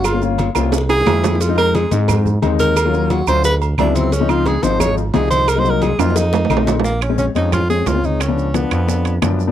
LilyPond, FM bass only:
\new Staff \with { instrumentName = "FM bass" } { \clef bass \time 4/4 \key bes \minor \tempo 4 = 176 g,,4. c,4. f,4~ | f,4. aes,4. ees,4~ | ees,4. d,4. des,4~ | des,4. aes,,4. c,4~ |
c,4. f,4. bes,,4~ | bes,,4. f,4. des,4~ | des,4. f,4. ges,4 | }